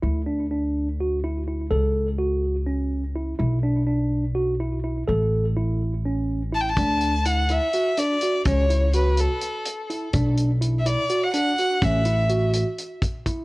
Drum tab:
HH |-------|-------|-------|-------|
BD |-------|-------|-------|-------|

HH |xxxxxxx|xxxxxxx|xxxxxxx|xxxxxxx|
BD |o------|o------|o------|o----oo|